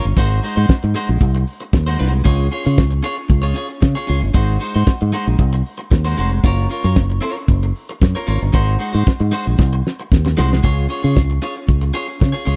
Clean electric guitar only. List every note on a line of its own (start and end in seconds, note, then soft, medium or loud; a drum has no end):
0.00 0.12 C#4 loud
0.06 muted clean electric guitar stroke medium
0.17 0.38 G#3 medium
0.17 0.38 D#4 medium
0.17 0.38 F#4 medium
0.17 0.39 C5 loud
0.43 0.56 G#3 medium
0.43 0.56 D#4 medium
0.43 0.55 F#4 medium
0.43 0.55 C5 medium
0.56 0.73 G#3 medium
0.56 0.73 D#4 medium
0.56 0.73 F#4 medium
0.56 0.72 C5 medium
0.83 muted clean electric guitar stroke medium
0.95 1.16 G#3 medium
0.95 1.09 D#4 medium
0.95 1.09 F#4 medium
0.95 1.08 C5 medium
1.09 muted clean electric guitar stroke medium
1.21 muted clean electric guitar stroke soft
1.35 muted clean electric guitar stroke soft
1.60 muted clean electric guitar stroke soft
1.73 muted clean electric guitar stroke soft
1.87 1.97 G#3 medium
1.87 1.98 D#4 medium
1.87 1.98 F#4 medium
1.87 1.99 C5 medium
1.98 2.20 G#3 medium
1.98 2.12 D#4 medium
1.98 2.12 F#4 medium
1.98 2.11 C5 medium
2.13 muted clean electric guitar stroke medium
2.24 2.46 C#4 loud
2.24 2.46 F4 loud
2.24 2.47 G#4 loud
2.24 2.47 C#5 loud
2.51 2.64 C#4 medium
2.51 2.64 F4 medium
2.51 2.63 G#4 medium
2.51 2.63 C#5 medium
2.64 2.82 C#4 medium
2.64 2.82 F4 medium
2.64 2.81 G#4 medium
2.64 2.81 C#5 medium
2.91 muted clean electric guitar stroke medium
3.03 3.25 C#4 medium
3.03 3.17 F4 medium
3.03 3.16 G#4 medium
3.03 3.16 C#5 loud
3.17 muted clean electric guitar stroke soft
3.28 muted clean electric guitar stroke soft
3.42 3.53 C#4 medium
3.42 3.54 F4 medium
3.42 3.54 G#4 medium
3.42 3.55 C#5 medium
3.54 3.76 C#4 medium
3.54 3.68 F4 medium
3.54 3.68 G#4 medium
3.54 3.67 C#5 medium
3.68 muted clean electric guitar stroke soft
3.81 muted clean electric guitar stroke soft
3.95 4.06 C#4 medium
3.95 4.07 F4 medium
3.95 4.07 G#4 medium
3.95 4.08 C#5 medium
4.07 4.29 C#4 medium
4.07 4.21 F4 loud
4.07 4.20 G#4 loud
4.07 4.20 C#5 medium
4.21 muted clean electric guitar stroke medium
4.34 4.55 G#3 medium
4.34 4.56 D#4 loud
4.34 4.56 F#4 medium
4.34 4.56 C5 medium
4.59 4.75 G#3 medium
4.59 4.74 D#4 medium
4.59 4.74 F#4 medium
4.59 4.73 C5 medium
4.75 4.92 G#3 medium
4.75 4.91 D#4 medium
4.75 4.91 F#4 medium
4.75 4.91 C5 medium
5.01 muted clean electric guitar stroke soft
5.13 5.34 G#3 medium
5.13 5.26 D#4 medium
5.13 5.26 F#4 medium
5.13 5.26 C5 loud
5.27 muted clean electric guitar stroke soft
5.39 muted clean electric guitar stroke soft
5.53 muted clean electric guitar stroke medium
5.78 muted clean electric guitar stroke medium
5.91 muted clean electric guitar stroke soft
6.05 6.16 G#3 medium
6.05 6.16 D#4 medium
6.05 6.17 F#4 medium
6.05 6.17 C5 medium
6.17 6.39 G#3 medium
6.17 6.31 D#4 loud
6.17 6.31 F#4 loud
6.17 6.30 C5 loud
6.31 muted clean electric guitar stroke soft
6.44 6.65 C#4 medium
6.44 6.66 F4 loud
6.44 6.66 A#4 loud
6.44 6.66 C#5 loud
6.69 6.84 C#4 medium
6.69 6.84 F4 medium
6.69 6.83 A#4 medium
6.69 6.83 C#5 medium
6.84 7.01 C#4 medium
6.84 7.01 F4 medium
6.84 7.01 A#4 medium
6.84 7.00 C#5 medium
7.10 muted clean electric guitar stroke medium
7.21 7.43 C#4 medium
7.21 7.36 F4 medium
7.21 7.36 A#4 medium
7.21 7.35 C#5 loud
7.36 muted clean electric guitar stroke soft
7.49 muted clean electric guitar stroke soft
7.63 muted clean electric guitar stroke soft
7.89 muted clean electric guitar stroke medium
8.02 muted clean electric guitar stroke soft
8.15 8.25 C#4 medium
8.15 8.26 F4 medium
8.15 8.26 A#4 medium
8.15 8.27 C#5 medium
8.27 8.48 C#4 loud
8.27 8.41 F4 loud
8.27 8.41 A#4 medium
8.27 8.40 C#5 loud
8.41 muted clean electric guitar stroke soft
8.52 8.74 G#3 medium
8.52 8.75 D#4 medium
8.52 8.75 F#4 medium
8.52 8.75 C5 loud
8.79 8.93 G#3 medium
8.79 8.93 D#4 medium
8.79 8.92 F#4 medium
8.79 8.91 C5 medium
8.93 9.10 G#3 medium
8.93 9.10 D#4 medium
8.93 9.10 F#4 medium
8.93 9.09 C5 medium
9.20 muted clean electric guitar stroke medium
9.31 9.53 G#3 medium
9.31 9.46 D#4 medium
9.31 9.45 F#4 medium
9.31 9.45 C5 medium
9.46 muted clean electric guitar stroke medium
9.59 muted clean electric guitar stroke soft
9.73 muted clean electric guitar stroke medium
10.00 muted clean electric guitar stroke soft
10.25 muted clean electric guitar stroke soft
10.37 10.58 G#3 loud
10.37 10.51 D#4 medium
10.37 10.51 F#4 loud
10.37 10.50 C5 loud
10.52 muted clean electric guitar stroke soft
10.63 10.84 C#4 medium
10.63 10.85 F4 medium
10.63 10.85 G#4 medium
10.63 10.85 C#5 medium
10.89 11.03 C#4 medium
10.89 11.03 F4 medium
10.89 11.02 G#4 medium
10.89 11.01 C#5 medium
11.03 11.20 C#4 medium
11.03 11.20 F4 medium
11.03 11.20 G#4 medium
11.03 11.19 C#5 medium
11.30 muted clean electric guitar stroke soft
11.42 11.63 C#4 medium
11.42 11.56 F4 medium
11.42 11.55 G#4 medium
11.42 11.54 C#5 medium
11.56 muted clean electric guitar stroke soft
11.67 muted clean electric guitar stroke soft
11.81 muted clean electric guitar stroke soft
11.94 12.15 C#4 medium
11.94 12.07 F4 medium
11.94 12.07 G#4 medium
11.94 12.06 C#5 medium
12.07 muted clean electric guitar stroke soft
12.20 muted clean electric guitar stroke soft
12.32 12.44 C#4 soft
12.32 12.44 F4 medium
12.32 12.45 G#4 medium
12.32 12.46 C#5 medium
12.45 12.56 C#4 medium
12.45 12.56 F4 medium
12.45 12.56 G#4 loud
12.45 12.56 C#5 medium